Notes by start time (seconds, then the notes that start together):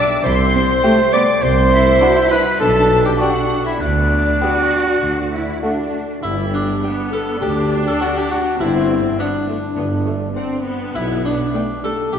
Already playing: D4 D5
0.24 C2 E4 C5 C6
0.55 C4
0.83 A3 G4 G5
1.12 B3 D5 D6
1.42 C2 C4 C5 C6
1.72 E4
2.01 D4 F#4 F#5
2.31 B4 B5
2.60 B1 D4 A4 A5
3.04 G4 G5
3.18 D4 F#4 G4 F#5 G5
3.64 E4 E5
3.79 D2 B3 D4 D5
4.41 B3 F#4 G4 G5
5.02 D2
5.32 E4
5.62 A3 D4 F#4 F#5
6.23 G1 G2 G3 E4
6.52 D4
6.82 B3 D5 G5
7.11 A4
7.41 D2 D4 G4
7.86 A4
8.00 B3 F#4 D5 G5
8.16 G4
8.31 F#4
8.59 G1 G2 C4 E4
9.18 B3 C4 D4 D5 F#5
9.47 A3
9.77 G1 G2 B3
10.06 A3
10.36 C4 D5 F#5
10.66 B3
10.95 B1 B2 E4
11.25 D4
11.53 A3 B3 D5 G5
11.83 G3 A4
12.12 B1 B2 B3 G4